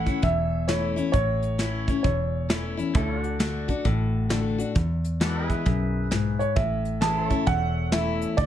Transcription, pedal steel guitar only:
0.00 2.91 E4 medium
0.00 2.91 A4 medium
0.00 2.92 C#5 medium
2.95 3.20 E4 medium
2.95 4.75 A4 medium
2.95 3.17 C#5 medium
3.17 4.74 F#4 medium
3.17 4.75 D5 medium
5.22 5.47 F#4 medium
5.22 5.47 A4 medium
5.22 5.48 D5 medium
5.47 6.56 G#4 medium
5.47 6.56 B4 medium
5.47 6.57 E5 medium
7.02 7.22 G#4 medium
7.02 7.28 B4 medium
7.02 8.38 E5 medium
7.22 8.37 A4 medium
7.28 8.37 C#5 medium

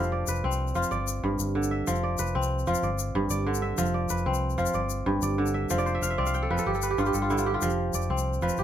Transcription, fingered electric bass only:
0.00 0.23 F1 medium
0.28 0.42 F1 medium
0.44 0.71 C2 loud
0.75 0.82 F1 medium
0.91 1.19 G1 medium
1.23 1.37 G1 medium
1.39 1.81 G1 loud
1.88 2.15 F1 medium
2.19 2.33 F1 medium
2.36 2.63 C2 loud
2.67 2.74 F1 medium
2.83 3.11 G1 medium
3.15 3.29 G1 medium
3.30 3.72 G1 loud
3.78 4.06 F1 medium
4.10 4.24 F1 medium
4.26 4.54 C2 loud
4.58 4.65 F1 medium
4.74 5.02 G1 medium
5.06 5.20 G1 medium
5.22 5.64 G1 loud
5.71 5.98 F1 medium
6.02 6.16 F1 medium
6.18 6.46 C2 loud
6.50 6.57 F1 medium
6.66 6.94 G1 medium
6.98 7.12 G1 medium
7.14 7.56 G1 medium
7.62 7.90 F1 medium
7.94 8.08 F1 medium
8.10 8.38 C2 loud
8.41 8.48 F1 medium
8.58 8.64 G1 medium

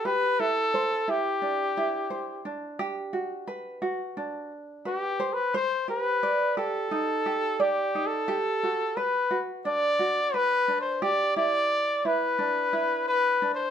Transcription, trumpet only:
0.05 0.41 B4 loud
0.40 1.12 A4 medium
1.10 2.46 G4 medium
4.87 5.35 G4 medium
5.33 5.55 B4 medium
5.56 5.87 C5 medium
5.90 6.54 B4 medium
6.57 7.62 A4 medium
7.61 8.08 G4 medium
8.06 8.98 A4 medium
8.96 9.39 B4 medium
9.66 10.36 D5 medium
10.35 10.80 B4 medium
10.80 11.03 C5 medium
11.02 11.36 D5 loud
11.36 12.07 D5 medium
12.06 13.07 B4 medium
13.08 13.50 B4 medium
13.55 13.70 C5 medium

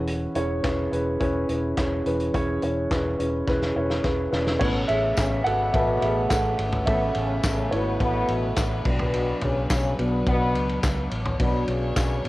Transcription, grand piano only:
0.00 0.60 E3 medium
0.00 0.28 C#4 medium
0.00 0.28 E4 medium
0.00 0.28 G#4 medium
0.00 0.29 B4 medium
0.35 0.60 C#4 medium
0.35 0.60 E4 medium
0.35 0.60 G#4 medium
0.35 0.61 C#5 medium
0.63 0.88 C#4 medium
0.63 0.88 E4 medium
0.63 0.89 G#4 medium
0.63 0.89 B4 medium
0.92 1.17 C#4 medium
0.92 1.17 E4 medium
0.92 1.17 G#4 medium
0.92 1.17 B4 medium
1.20 1.45 C#4 medium
1.20 1.45 E4 medium
1.20 1.45 G#4 medium
1.20 1.46 B4 medium
1.49 1.73 C#4 medium
1.49 1.74 E4 medium
1.49 1.74 G#4 medium
1.49 1.74 B4 medium
1.77 2.02 C#4 medium
1.77 2.02 E4 medium
1.77 2.02 G#4 medium
1.77 2.02 C#5 medium
2.05 2.87 E3 medium
2.05 2.30 C#4 medium
2.05 2.30 E4 medium
2.05 2.30 G#4 medium
2.05 2.31 B4 medium
2.33 2.58 C#4 medium
2.33 2.59 E4 medium
2.33 2.59 G#4 medium
2.33 2.59 C#5 loud
2.62 2.87 C#4 medium
2.62 2.87 E4 medium
2.62 2.87 G#4 medium
2.62 2.87 C#5 medium
2.90 3.15 C#4 medium
2.90 3.15 E4 medium
2.90 3.16 G#4 medium
2.90 3.16 B4 medium
3.19 3.44 C#4 medium
3.19 3.44 E4 medium
3.19 3.44 G#4 medium
3.19 3.44 B4 medium
3.47 3.72 C#4 medium
3.47 3.72 E4 medium
3.47 3.72 G#4 medium
3.47 3.73 B4 loud
3.75 4.00 C#4 medium
3.75 4.00 E4 medium
3.75 4.00 G#4 medium
3.75 4.01 C#5 medium
4.03 4.28 C#4 medium
4.03 4.29 E4 medium
4.03 4.29 G#4 medium
4.03 4.29 B4 medium
4.31 4.57 C#4 medium
4.31 4.40 D4 soft
4.31 4.57 E4 medium
4.31 4.57 G#4 medium
4.31 4.57 B4 medium
4.59 6.83 A3 soft
4.59 6.83 B3 soft
4.59 6.84 C#4 medium
4.59 4.68 E4 medium
4.59 4.66 C#5 medium
4.88 5.42 G#4 medium
4.88 5.47 E5 loud
5.44 5.73 A4 medium
5.44 5.74 F#5 loud
5.73 6.01 A4 medium
5.73 6.00 E5 medium
6.01 6.29 G#4 medium
6.01 6.31 E5 medium
6.29 6.84 A4 medium
6.29 6.88 F#5 medium
6.86 7.68 A3 medium
6.86 7.68 B3 soft
6.86 7.68 C#4 medium
6.86 7.68 A4 medium
6.86 7.74 E5 loud
7.71 8.82 E4 medium
7.71 8.81 C#5 medium
8.85 9.97 F#3 soft
8.85 9.97 B3 soft
8.85 9.98 D4 medium
9.99 10.24 F#3 soft
9.99 10.24 B3 soft
9.99 10.24 D4 medium
11.40 12.29 F#3 medium
11.40 12.29 B3 soft
11.40 12.29 D4 medium

